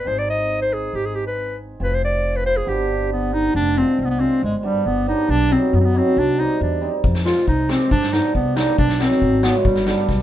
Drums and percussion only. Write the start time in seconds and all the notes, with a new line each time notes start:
7.04 kick
7.15 snare
7.26 snare
7.37 snare
7.48 kick
7.69 snare
7.91 kick
8.03 snare
8.13 snare
8.35 kick
8.57 snare
8.78 kick
8.89 snare
9.00 snare
9.11 snare
9.22 kick
9.43 snare
9.65 kick
9.76 snare
9.87 snare
10.09 kick, snare